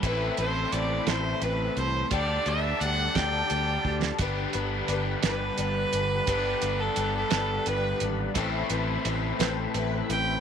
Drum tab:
HH |x-x-x-x-x-x-|x-x-x-x-x---|x-x-x-x-x-x-|x-x-x-x-x-x-|
SD |------o-----|------o----o|------o-----|------o-----|
BD |o-----------|o-----o---o-|o-----------|o-----------|

HH |x-x-x-x-x-x-|
SD |------o-----|
BD |o-----------|